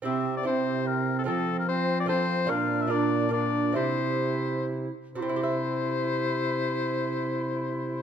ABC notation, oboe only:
X:1
M:3/4
L:1/16
Q:1/4=136
K:Cmix
V:1 name="Oboe"
e3 d c4 B3 A | A3 B c3 d c4 | f3 e d4 d4 | c8 z4 |
c12- | c12 |]